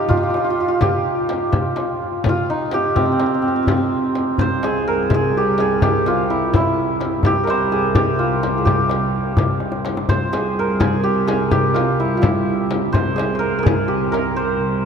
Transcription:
Already playing: santur D#4 G4
0.09 santur F4, frame drum, tombak dum
0.17 santur F4
0.23 santur F4
0.30 santur F4
0.34 santur F4, tombak tek
0.44 santur F4
0.50 santur F4
0.58 santur F4, tombak ka
0.68 santur F4
0.81 santur G4, frame drum, tombak dum
1.05 tombak ka
1.29 tombak tek, frame drum
1.53 frame drum, tombak dum
1.76 tombak tek, frame drum
2.02 tombak ka
2.24 frame drum, tombak dum
2.29 santur F4
2.50 santur D#4, tombak ka
2.71 santur G4, tombak tek, frame drum
2.96 santur C4, frame drum, tombak dum
3.06 santur C4
3.12 santur C4
3.19 santur C4, tombak tek, frame drum
3.26 santur C4
3.34 santur C4
3.42 santur C4, tombak ka
3.48 santur C4
3.56 santur C4
3.62 santur C4
3.67 santur C4, tombak dum, frame drum
3.77 santur C4
3.91 tombak ka
4.15 tombak tek, frame drum
4.38 cello section C2, santur C5, tombak dum, frame drum
4.63 santur G#4, tombak tek, frame drum
4.87 santur A#4, tombak ka
5.10 frame drum, tombak dum
5.14 santur G#4
5.37 santur G4
5.58 santur G#4, tombak tek, frame drum
5.82 santur G4, tombak dum, frame drum
6.06 santur F4, tombak tek, frame drum
6.30 santur E4, tombak ka
6.54 santur E4, frame drum, tombak dum
7.01 tombak tek, frame drum
7.23 cello section C2, santur G4, tombak dum, frame drum
7.44 santur A#4, tombak tek
7.48 santur C5, frame drum
7.71 santur G#4, tombak ka
7.95 santur G4, tombak dum, frame drum
8.19 santur F4
8.43 tombak tek, frame drum
8.58 santur G#4
8.65 santur G4, tombak dum, frame drum
8.90 tombak tek, frame drum
9.14 tombak ka
9.37 tombak dum, frame drum
9.60 tombak tek
9.72 tombak ka
9.85 tombak tek, frame drum
9.97 tombak ka
10.09 cello section C2, santur C5, tombak dum, frame drum
10.33 santur G#4, tombak tek, frame drum
10.58 santur A#4, tombak ka
10.80 santur G#4, frame drum, tombak dum
11.04 santur G4
11.27 santur G#4, tombak tek, frame drum
11.51 santur G4, frame drum, tombak dum
11.74 santur F4, tombak tek, frame drum
12.00 santur E4, tombak ka
12.17 santur F4
12.22 santur E4, frame drum, tombak dum
12.71 tombak tek, frame drum
12.93 cello section C2, santur C5, tombak dum, frame drum
13.16 santur G#4, tombak tek, frame drum
13.35 santur C5
13.39 santur A#4, tombak ka
13.59 santur A#4
13.63 santur G#4, tombak dum, frame drum
13.88 santur G4
14.12 santur A#4, tombak tek, frame drum
14.36 santur C5

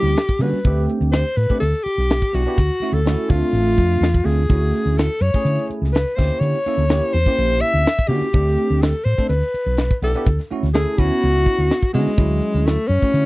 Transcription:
Already playing: tine electric piano G3 A#3 C#4 E4, alto saxophone G4
0.03 fingered electric bass D2
0.07 snare
0.17 snare, closed hi-hat
0.29 muted fingered electric bass stroke, kick
0.39 fingered electric bass D3, tine electric piano G3 A#3 C#4 F#4, alto saxophone B4, open hi-hat
0.53 muted fingered electric bass stroke
0.64 fingered electric bass D2, tine electric piano A3 C4 D4 G4, kick, closed hi-hat
0.89 closed hi-hat
1.01 fingered electric bass D2, closed hi-hat
1.12 alto saxophone C5, snare, closed hi-hat
1.37 fingered electric bass A2, alto saxophone B4, closed hi-hat
1.50 tine electric piano A3 C4 D4 G4, kick, closed hi-hat
1.60 fingered electric bass D2, alto saxophone A4, closed hi-hat
1.75 closed hi-hat
1.84 alto saxophone G4, muted fingered electric bass stroke, closed hi-hat
1.98 fingered electric bass B1, snare
2.10 snare, closed hi-hat
2.22 kick, closed hi-hat
2.33 fingered electric bass B1, tine electric piano B3 D4 E4 G4, alto saxophone F#4, open hi-hat
2.46 tine electric piano B3 D4 E4 G4, closed hi-hat
2.58 fingered electric bass D2, kick, closed hi-hat
2.70 closed hi-hat
2.80 tine electric piano A3 C#4 E4 F#4, muted fingered electric bass stroke, closed hi-hat
2.92 fingered electric bass D2, alto saxophone A4, closed hi-hat
3.05 tine electric piano A3 C#4 E4 F#4, snare, closed hi-hat
3.29 fingered electric bass D2, tine electric piano A3 C4 D4 F4, alto saxophone F4, kick, closed hi-hat
3.53 fingered electric bass A1, closed hi-hat
3.77 fingered electric bass F2, kick, closed hi-hat
4.01 fingered electric bass E2, snare, closed hi-hat
4.14 kick
4.23 fingered electric bass D2, tine electric piano A3 C4 D4 F4, alto saxophone G#4, open hi-hat
4.28 snare
4.49 fingered electric bass D2, tine electric piano A3 C#4 E4 F#4, kick, closed hi-hat
4.74 snare, closed hi-hat
4.86 fingered electric bass D2, closed hi-hat
4.98 alto saxophone A4, snare, closed hi-hat
5.21 fingered electric bass F#2, alto saxophone C#5, closed hi-hat
5.34 tine electric piano A3 C#4 E4 G#4, kick, closed hi-hat
5.45 fingered electric bass D3, closed hi-hat
5.59 closed hi-hat
5.70 muted fingered electric bass stroke, closed hi-hat
5.82 fingered electric bass C#2, snare
5.92 alto saxophone B4, snare, closed hi-hat
6.08 closed hi-hat
6.16 fingered electric bass D2, tine electric piano A#3 C#4 E4 G4, alto saxophone C5, kick
6.20 snare, open hi-hat
6.32 closed hi-hat
6.40 fingered electric bass D3, alto saxophone C#5, closed hi-hat
6.55 closed hi-hat
6.66 tine electric piano A#3 C#4 E4 A4, muted fingered electric bass stroke, closed hi-hat
6.78 fingered electric bass D2, closed hi-hat
6.89 tine electric piano A#3 C#4 E4 G4, snare, closed hi-hat
7.13 fingered electric bass E2, alto saxophone C5, closed hi-hat
7.26 tine electric piano A#3 C#4 E4 G4, kick
7.38 fingered electric bass A#1, closed hi-hat
7.61 alto saxophone E5, closed hi-hat
7.74 fingered electric bass D2
7.86 snare, closed hi-hat
7.99 muted fingered electric bass stroke, kick
8.08 fingered electric bass D3, tine electric piano A#3 C#4 E4 F#4, alto saxophone G4, open hi-hat
8.21 muted fingered electric bass stroke
8.33 fingered electric bass D2, tine electric piano A3 C4 D4 G4, kick, closed hi-hat
8.48 snare
8.58 closed hi-hat
8.70 fingered electric bass D2, closed hi-hat
8.82 alto saxophone A4, snare, closed hi-hat
9.04 fingered electric bass A2, alto saxophone C5, closed hi-hat
9.18 tine electric piano A3 C4 D4 A4, muted fingered electric bass stroke, kick, closed hi-hat
9.29 fingered electric bass D2, alto saxophone B4, closed hi-hat
9.43 closed hi-hat
9.54 muted fingered electric bass stroke, closed hi-hat
9.66 fingered electric bass B1
9.77 snare, closed hi-hat
9.91 kick, closed hi-hat
10.02 fingered electric bass B1, tine electric piano B3 D4 E4 G4, alto saxophone A4, open hi-hat
10.15 tine electric piano B3 D4 E4 G4, closed hi-hat
10.26 fingered electric bass D2, kick, closed hi-hat
10.39 snare, closed hi-hat
10.51 tine electric piano A3 C#4 E4 F#4, muted fingered electric bass stroke, closed hi-hat
10.63 fingered electric bass D2, snare, closed hi-hat
10.74 tine electric piano A3 C#4 E4 A4, alto saxophone G#4, snare, closed hi-hat
10.98 fingered electric bass D2, tine electric piano B3 C#4 E4 F#4, alto saxophone F#4, kick, closed hi-hat
11.22 fingered electric bass C#2, closed hi-hat
11.46 muted fingered electric bass stroke, kick, closed hi-hat
11.58 fingered electric bass D2
11.70 snare, closed hi-hat
11.82 muted fingered electric bass stroke, kick
11.93 fingered electric bass D3, alto saxophone G#3, tine electric piano B3 C#4 E4 F#4, open hi-hat
12.07 muted fingered electric bass stroke
12.17 fingered electric bass D2, tine electric piano F#3 C#4 E4 F#4, kick, closed hi-hat
12.42 closed hi-hat
12.54 fingered electric bass D2, closed hi-hat
12.66 alto saxophone A3, snare, closed hi-hat
12.88 fingered electric bass F#2, alto saxophone C#4, closed hi-hat
13.02 tine electric piano A3 C#4 E4 F#4, kick
13.14 fingered electric bass D3, closed hi-hat

